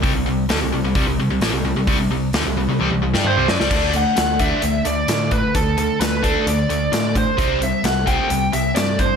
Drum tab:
CC |----------------|----------------|x---------------|----------------|
HH |o---o---o---o---|o---o-----------|--x-x-x-x-x-x-x-|x-x-x-x-x-x-x-x-|
SD |----o-------o---|----o------o--oo|----o-------o---|----o-------o---|
T1 |----------------|--------oo------|----------------|----------------|
T2 |----------------|------------o---|----------------|----------------|
BD |o-------o-------|o---------------|o-----o-------o-|o-----o-------o-|

CC |----------------|
HH |x-x-x-x-x-x-x-x-|
SD |----o-------o---|
T1 |----------------|
T2 |----------------|
BD |o-----o-------o-|